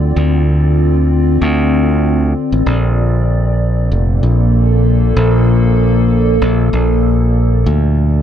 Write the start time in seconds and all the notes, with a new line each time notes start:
Already playing: D2 D3 C4 F4 D5
0.16 D2
1.42 D2
2.52 A1
2.66 A#1 A#2
2.98 A#3
3.62 A4
3.92 F1
4.23 A#1
5.17 A#1
6.42 A#1
6.73 A#1
7.66 D2 D3
7.80 F4
8.15 C4